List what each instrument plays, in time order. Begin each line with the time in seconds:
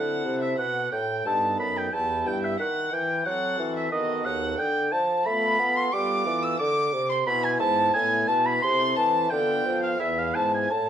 Already playing: pipe organ D3 C4 E4 A4, bassoon D3, violin F#5, oboe F#5
0.24 pipe organ C3, bassoon C3
0.41 violin E5, oboe E5
0.58 pipe organ B2, bassoon B2, violin F#5, oboe F#5
0.92 pipe organ A2, bassoon A2, oboe G5, violin G5
1.25 bassoon G2, pipe organ G2 B3 D#4 A4, violin A5, oboe A5
1.59 pipe organ F#2, bassoon F#2, oboe B5, violin B5
1.77 violin G5, oboe G5
1.92 pipe organ E2 B3 E4 G4, bassoon E2, violin A5, oboe A5
2.26 pipe organ G2, bassoon G2, violin G5, oboe G5
2.43 violin E5, oboe E5
2.59 bassoon D#3, pipe organ D#3, oboe F#5, violin F#5
2.92 bassoon E3, pipe organ E3, oboe G5, violin G5
3.26 pipe organ F#3 C4 F#4 A4, bassoon F#3, oboe F#5, violin F#5
3.59 pipe organ E3, bassoon E3
3.76 violin E5, oboe E5
3.91 pipe organ D#3 B3 F#4 A4, bassoon D#3, oboe D#5, violin D#5
4.25 pipe organ D#2, bassoon D#2, oboe F#5, violin F#5
4.58 bassoon D3, pipe organ D3, violin G5, oboe G5
4.92 bassoon F3, pipe organ F3, oboe A5, violin A5
5.26 bassoon A3, pipe organ A3 B3 F4 A4, violin B5, oboe B5
5.59 bassoon B3, pipe organ B3
5.76 violin C6, oboe C6
5.92 bassoon G3, pipe organ G3 B3 F4 A4, violin D6, oboe D6
6.26 pipe organ E3, bassoon E3
6.43 violin E6, oboe E6
6.59 pipe organ D3, bassoon D3, oboe D6, violin D6
6.93 pipe organ C3, bassoon C3
7.10 violin C6, oboe C6
7.26 pipe organ B2 B3 E4 G#4, bassoon B2, violin B5, oboe B5
7.43 violin G#5, oboe G#5
7.60 pipe organ G#2, bassoon G#2, violin A5, oboe A5
7.94 pipe organ A2 B3 E4 G#4, bassoon A2, violin G#5, oboe G#5
8.28 pipe organ B2, bassoon B2, oboe A5, violin A5
8.46 oboe B5, violin B5
8.62 pipe organ C3 C4 E4 A4, bassoon C3, oboe C6, violin C6
8.96 pipe organ E3, bassoon E3, violin A5, oboe A5
9.30 pipe organ D3 B3 F4 A4, bassoon D3, oboe G5, violin G5
9.65 pipe organ F3, bassoon F3
9.83 violin F5, oboe F5
10.00 bassoon E2, pipe organ E2 B3 E4 G#4, oboe E5, violin E5
10.18 oboe F5, violin F5
10.35 pipe organ G#2, bassoon G#2, oboe A5, violin A5
10.53 violin G#5, oboe G#5
10.71 pipe organ A2, bassoon A2, oboe A5, violin A5